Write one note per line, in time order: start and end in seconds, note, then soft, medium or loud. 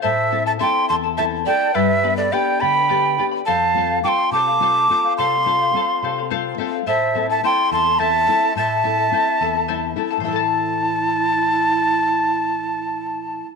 0.02 0.60 A2 medium
0.02 0.30 E4 loud
0.02 0.31 A4 medium
0.02 0.43 C5 medium
0.02 0.32 C5 medium
0.02 0.29 E5 medium
0.02 0.43 E5 medium
0.02 0.31 A5 loud
0.31 0.59 C4 medium
0.31 0.46 E4 medium
0.31 0.60 E4 medium
0.31 0.45 A4 medium
0.31 0.59 A4 medium
0.31 0.46 E5 medium
0.31 0.45 A5 medium
0.46 0.59 E4 soft
0.46 0.59 A4 medium
0.46 0.52 E5 medium
0.46 0.59 A5 medium
0.46 0.53 A5 loud
0.59 1.06 C4 medium
0.59 0.88 E4 medium
0.59 1.07 E4 medium
0.59 0.88 A4 medium
0.59 1.07 A4 medium
0.59 0.89 C5 medium
0.59 0.87 E5 medium
0.59 0.88 G5 medium
0.59 0.89 A5 loud
0.59 0.87 C6 medium
0.88 1.45 E2 medium
0.88 1.04 E4 medium
0.88 1.03 A4 medium
0.88 1.03 E5 medium
0.88 0.96 A5 medium
0.88 1.02 A5 medium
0.88 0.95 C6 loud
1.04 1.17 E4 soft
1.04 1.17 A4 medium
1.04 1.17 A5 medium
1.17 1.45 C4 soft
1.17 1.45 E4 medium
1.17 1.46 E4 soft
1.17 1.46 A4 medium
1.17 1.47 C5 medium
1.17 1.24 E5 medium
1.17 1.45 E5 medium
1.17 1.24 A5 medium
1.17 1.46 A5 medium
1.46 1.70 C4 medium
1.46 1.60 E4 medium
1.46 1.70 E4 soft
1.46 1.59 A4 medium
1.46 1.70 A4 medium
1.46 1.75 D5 medium
1.46 1.61 E5 medium
1.46 1.76 G5 loud
1.46 1.59 A5 medium
1.60 1.74 E4 soft
1.60 1.74 A4 medium
1.60 1.74 A5 medium
1.74 2.31 G2 medium
1.74 2.04 G4 medium
1.74 2.16 B4 medium
1.74 2.02 B4 medium
1.74 2.03 D5 medium
1.74 2.16 E5 medium
1.74 2.02 G5 medium
1.74 2.03 B5 loud
2.03 2.32 B3 medium
2.03 2.32 D4 medium
2.03 2.32 G4 medium
2.03 2.18 B4 medium
2.03 2.17 D5 medium
2.03 2.18 G5 medium
2.03 2.17 B5 medium
2.17 2.33 A4 medium
2.17 2.32 B4 soft
2.17 2.34 D5 medium
2.17 2.31 D5 medium
2.17 2.32 B5 medium
2.31 2.79 B3 medium
2.31 2.79 D4 soft
2.31 2.61 G4 medium
2.31 2.79 G4 medium
2.31 2.59 B4 medium
2.31 2.62 D5 medium
2.31 2.59 D5 medium
2.31 2.58 G5 medium
2.31 2.62 G5 loud
2.31 2.60 B5 medium
2.60 3.17 D3 medium
2.60 2.75 B4 medium
2.60 2.75 D5 medium
2.60 2.75 G5 medium
2.60 3.25 G5 medium
2.60 3.25 B5 loud
2.60 2.74 B5 medium
2.75 2.88 B4 soft
2.75 2.89 D5 soft
2.75 2.89 B5 medium
2.89 3.17 B3 medium
2.89 3.18 D4 soft
2.89 3.18 G4 medium
2.89 3.17 B4 medium
2.89 3.18 D5 medium
2.89 3.17 G5 medium
2.89 3.18 B5 medium
3.18 3.41 B3 medium
3.18 3.42 D4 soft
3.18 3.42 G4 medium
3.18 3.32 B4 medium
3.18 3.31 D5 medium
3.18 3.33 G5 medium
3.18 3.30 B5 medium
3.31 3.46 B4 soft
3.31 3.47 D5 soft
3.31 3.46 B5 medium
3.46 4.03 F2 medium
3.46 3.75 A4 medium
3.46 3.76 C5 medium
3.46 4.00 F5 loud
3.46 3.76 F5 loud
3.46 3.99 A5 loud
3.74 4.02 A3 medium
3.74 4.02 C4 soft
3.74 4.03 F4 medium
3.74 3.90 A4 medium
3.74 3.90 C5 medium
3.74 3.89 F5 medium
3.90 4.04 C5 soft
3.90 4.04 F5 medium
4.03 4.49 A3 medium
4.03 4.49 C4 soft
4.03 4.50 F4 medium
4.03 4.33 A4 medium
4.03 4.33 C5 medium
4.03 4.33 F5 medium
4.03 4.30 G5 medium
4.03 4.09 D6 medium
4.08 4.30 C6 loud
4.31 4.87 C3 medium
4.31 4.47 A4 medium
4.31 4.47 C5 medium
4.31 4.46 F5 medium
4.31 5.13 A5 medium
4.31 5.14 D6 loud
4.47 4.61 C5 soft
4.47 4.61 F5 medium
4.60 4.88 A3 soft
4.60 4.89 C4 soft
4.60 4.89 F4 medium
4.60 4.89 A4 medium
4.60 4.90 C5 medium
4.60 4.90 F5 medium
4.90 5.35 A3 medium
4.90 5.35 C4 medium
4.90 5.35 F4 medium
4.90 5.04 A4 medium
4.90 5.04 C5 medium
4.90 5.03 F5 medium
5.04 5.18 C5 soft
5.04 5.18 F5 medium
5.18 5.73 C3 medium
5.18 5.45 A4 medium
5.18 5.46 C5 medium
5.18 6.27 F5 medium
5.18 5.47 F5 loud
5.18 6.27 C6 loud
5.46 5.72 A3 medium
5.46 5.73 C4 medium
5.46 5.74 F4 medium
5.46 5.60 A4 medium
5.46 5.61 C5 medium
5.46 5.60 F5 medium
5.61 5.75 C5 soft
5.61 5.75 F5 medium
5.73 6.19 A3 medium
5.73 6.19 C4 medium
5.73 6.20 F4 medium
5.73 6.03 A4 medium
5.73 6.03 C5 medium
5.73 6.03 F5 medium
6.03 6.57 C3 medium
6.03 6.17 A4 medium
6.03 6.18 C5 medium
6.03 6.17 F5 medium
6.18 6.30 C5 medium
6.18 6.30 F5 medium
6.30 6.57 A3 medium
6.30 6.57 C4 soft
6.30 6.58 F4 medium
6.30 6.58 A4 medium
6.30 6.59 C5 loud
6.30 6.57 C5 medium
6.30 6.59 F5 loud
6.58 6.81 A3 medium
6.58 6.81 C4 medium
6.58 6.82 F4 medium
6.58 6.73 A4 medium
6.58 6.73 C5 medium
6.58 6.85 E5 medium
6.58 6.72 F5 medium
6.73 6.86 C5 soft
6.73 6.87 F5 medium
6.86 7.42 A2 medium
6.86 7.14 E4 loud
6.86 7.15 A4 medium
6.86 7.15 C5 medium
6.86 7.27 C5 medium
6.86 7.27 E5 loud
6.86 7.14 E5 medium
6.86 7.15 A5 medium
7.15 7.42 A3 medium
7.15 7.42 C4 medium
7.15 7.29 E4 medium
7.15 7.42 E4 medium
7.15 7.28 A4 medium
7.15 7.29 E5 medium
7.15 7.28 A5 medium
7.30 7.44 E4 soft
7.30 7.43 A4 medium
7.30 7.43 E5 medium
7.30 7.43 A5 medium
7.30 7.43 A5 loud
7.43 7.88 A3 medium
7.43 7.89 C4 soft
7.43 7.89 E4 medium
7.43 7.70 E4 loud
7.43 7.71 A4 medium
7.43 7.72 C5 medium
7.43 7.70 E5 medium
7.43 7.70 G5 medium
7.43 7.71 A5 medium
7.43 7.70 C6 loud
7.71 8.26 E2 medium
7.71 7.85 E4 medium
7.71 7.85 A4 medium
7.71 7.86 E5 medium
7.71 8.02 A5 medium
7.71 7.83 A5 medium
7.71 8.01 C6 loud
7.84 7.99 E4 medium
7.84 7.99 A4 medium
7.84 7.99 A5 medium
7.98 8.27 A3 medium
7.98 8.27 C4 soft
7.98 8.28 E4 medium
7.98 8.27 E4 medium
7.98 8.28 A4 medium
7.98 8.28 C5 medium
7.98 8.27 E5 medium
7.98 8.57 E5 medium
7.98 8.56 A5 loud
7.98 8.28 A5 loud
8.28 8.51 A3 medium
8.28 8.51 C4 medium
8.28 8.42 E4 medium
8.28 8.51 E4 medium
8.28 8.42 A4 medium
8.28 8.42 E5 medium
8.28 8.41 A5 medium
8.42 8.56 E4 soft
8.42 8.56 A4 medium
8.42 8.56 A5 medium
8.56 9.11 A2 medium
8.56 8.83 E4 medium
8.56 8.84 A4 medium
8.56 8.85 C5 medium
8.56 9.93 E5 medium
8.56 8.83 E5 medium
8.56 9.93 A5 loud
8.56 8.85 A5 medium
8.84 9.10 A3 medium
8.84 9.10 C4 soft
8.84 9.11 E4 medium
8.84 8.98 E4 medium
8.84 8.97 A4 medium
8.84 8.98 E5 medium
8.84 8.96 A5 medium
8.98 9.13 E4 soft
8.98 9.13 A4 soft
8.98 9.12 A5 medium
9.11 9.57 A3 medium
9.11 9.57 C4 soft
9.11 9.57 E4 medium
9.11 9.40 E4 medium
9.11 9.41 A4 medium
9.11 9.41 C5 medium
9.11 9.40 E5 medium
9.11 9.41 A5 medium
9.41 9.95 E2 medium
9.41 9.55 E4 medium
9.41 9.55 A4 medium
9.41 9.55 E5 medium
9.41 9.54 A5 medium
9.55 9.67 E4 medium
9.55 9.67 A4 medium
9.55 9.68 A5 medium
9.68 9.95 A3 soft
9.68 9.95 C4 soft
9.68 9.96 E4 medium
9.68 9.95 E4 medium
9.68 9.97 A4 loud
9.68 9.97 C5 medium
9.68 9.95 E5 medium
9.68 9.97 A5 medium
9.96 10.19 A3 medium
9.96 10.19 C4 medium
9.96 10.19 E4 medium
9.96 10.11 E4 medium
9.96 10.10 A4 medium
9.96 10.11 E5 medium
9.96 10.09 A5 medium
10.10 10.26 E4 soft
10.10 10.25 A4 medium
10.10 10.24 A5 medium
10.17 13.40 A2 medium
10.17 13.43 E3 medium
10.17 13.56 C5 loud
10.23 13.45 A3 medium
10.23 13.47 E4 medium
10.23 13.48 E4 medium
10.23 13.56 E5 medium
10.23 13.47 A5 loud
10.28 13.56 E4 medium
10.28 13.51 C5 medium
10.28 13.54 E5 medium
10.33 13.56 A4 medium
10.33 13.56 A5 loud